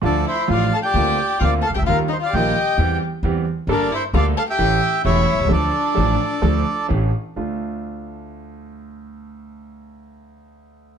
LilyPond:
<<
  \new Staff \with { instrumentName = "Bandoneon" } { \time 4/4 \key d \minor \tempo 4 = 131 << { d''8 e''8 f''8 a''16 g''4~ g''16 f''8 a''16 g''16 | f''8 ees''16 f''16 g''4. r4. | d''8 e''8 f''8 a''16 g''4~ g''16 e''4 | d''2. r4 |
r1 | r1 | } \\ { a'8 c''8 d''8 f''16 d''4~ d''16 d''8 f''16 e''16 | bes'8 c''16 d''16 ees''4 r2 | bes'8 c''8 d''8 f''16 e''4~ e''16 cis''4 | a'2. r4 |
r1 | r1 | } >> }
  \new Staff \with { instrumentName = "Violin" } { \time 4/4 \key d \minor d'8 e'8 f'8 a'16 g'4~ g'16 f'8 a'16 g'16 | f'8 ees'16 f'16 g'4. r4. | d'8 e'8 f'8 a'16 g'4~ g'16 e'4 | d'2. r4 |
r1 | r1 | }
  \new Staff \with { instrumentName = "Grand piano" } { \clef bass \time 4/4 \key d \minor <d, d f a f'>8 r8 <a,, a, d f a f'>8 r8 <d, d bes c' f'>8 r8 <d, d bes c' f'>8 r32 c,32 cis,32 d,32 | <ees, ees g bes f'>8 r8 <bes,, bes, ees g bes f'>8 r8 <e, e g c' g'>8 r8 <e, e g c' g'>8 r8 | <g,, g, g bes d' a'>8 r8 <d, d g bes d' a'>8 r8 <a,, a, e a cis' g'>8 r8 <e,, e, e a cis' g'>8 r32 b,,32 c,32 cis,32 | <d, d f a d' a'>8 r8 <a,, a, f a d' a'>8 r8 <d, d f a d' a'>8 r8 <a,, a, e a cis' g'>8 r8 |
<d, a d' f'>1~ | <d, a d' f'>1 | }
  \new Staff \with { instrumentName = "Upright bass" } { \clef bass \time 4/4 \key d \minor d,16. r8 r32 a,,16. r8 r32 d,16. r8 r32 d,16. r16 c,32 cis,32 d,32 | ees,16. r8 r32 bes,,16. r8 r32 e,16. r8 r32 e,16. r8 r32 | g,,16. r8 r32 d,16. r8 r32 a,,16. r8 r32 e,,16. r16 b,,32 c,32 cis,32 | d,16. r8 r32 a,,16. r8 r32 d,16. r8 r32 a,,16. r8 r32 |
d,8 r2. r8 | r1 | }
>>